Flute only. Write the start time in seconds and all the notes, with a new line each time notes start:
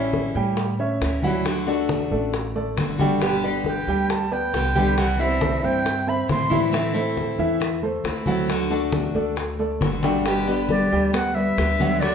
3.67 G5
4.11 A5
4.33 G5
4.99 F#5
5.21 E5
5.65 G5
6.09 B5
6.31 C6
10.70 D5
11.14 F#5
11.35 E5
12.01 D5